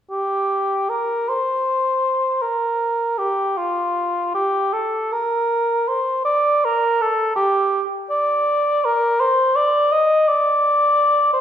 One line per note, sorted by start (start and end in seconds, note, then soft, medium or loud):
0.10 0.91 G4 soft
0.89 1.31 A#4 soft
1.29 2.43 C5 medium
2.42 3.20 A#4 soft
3.18 3.58 G4 soft
3.57 4.33 F4 soft
4.34 4.74 G4 medium
4.73 5.14 A4 soft
5.12 5.90 A#4 medium
5.88 6.24 C5 medium
6.25 6.66 D5 medium
6.65 7.03 A#4 medium
7.01 7.35 A4 medium
7.36 7.82 G4 medium
8.10 8.86 D5 medium
8.85 9.22 A#4 medium
9.20 9.57 C5 medium
9.56 9.94 D5 medium
9.92 10.29 D#5 medium
10.28 11.33 D5 medium
11.33 11.41 C5 medium